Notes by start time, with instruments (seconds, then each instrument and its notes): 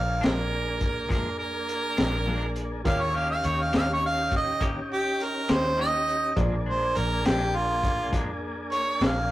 Already playing: fingered electric bass A#1, tonewheel organ A#3 D4 G#4, upright piano F4 G#4 C5 D5, harmonica F5
0.21 fingered electric bass A#1, clean electric guitar F3 G#3 D4, harmonica A#4, snare, closed hi-hat
0.81 kick, closed hi-hat
1.09 fingered electric bass F2, clean electric guitar A#2 F3 G#3 D4, harmonica A#4, kick, closed hi-hat
1.39 harmonica A#4
1.69 closed hi-hat
1.97 fingered electric bass A#1, clean electric guitar F3 G#3 D4, snare, closed hi-hat
2.26 clean electric guitar A#2 F3 G#3 D4
2.56 closed hi-hat
2.84 fingered electric bass D#2, clean electric guitar D#3 A#3 C#4 G4, tonewheel organ D4 E4 G#4, upright piano F4 G4 A#4 C#5, harmonica F5, kick, closed hi-hat
3.01 harmonica C#5
3.14 clean electric guitar A#3 C#4 G4, tonewheel organ C#4 D#4 G4, harmonica F5
3.31 harmonica F5
3.44 fingered electric bass D#2, harmonica C#5, closed hi-hat
3.62 harmonica F5
3.73 fingered electric bass D#2, clean electric guitar A#3 C#4 G4, snare, closed hi-hat
3.77 harmonica F5
3.93 harmonica C#5
4.06 harmonica F5
4.31 kick, closed hi-hat
4.37 harmonica D#5
4.61 fingered electric bass A#1, clean electric guitar D#3 A#3 C#4 G4, kick, closed hi-hat
4.93 harmonica G4
5.20 harmonica A#4, closed hi-hat
5.48 fingered electric bass D#2, clean electric guitar A#3 C#4 G4, harmonica C5, snare, closed hi-hat
5.78 clean electric guitar D#3 A#3 C#4 G4, harmonica D#5
6.08 closed hi-hat
6.36 fingered electric bass A#1, clean electric guitar A#2 F3 G#3 D4, tonewheel organ A#3 D4 G#4, upright piano F4 G#4 C5 D5, kick, closed hi-hat
6.66 clean electric guitar F3 G#3 D4, harmonica C5
6.95 fingered electric bass A#1, harmonica A#4, closed hi-hat
7.25 fingered electric bass A#1, clean electric guitar F3 G#3 D4, harmonica G4, snare, closed hi-hat
7.55 harmonica F4
7.83 kick, closed hi-hat
8.12 fingered electric bass F2, clean electric guitar A#2 F3 G#3 D4, kick, closed hi-hat
8.72 harmonica C#5, closed hi-hat
9.01 fingered electric bass A#1, clean electric guitar F3 G#3 D4, snare, closed hi-hat
9.05 harmonica F5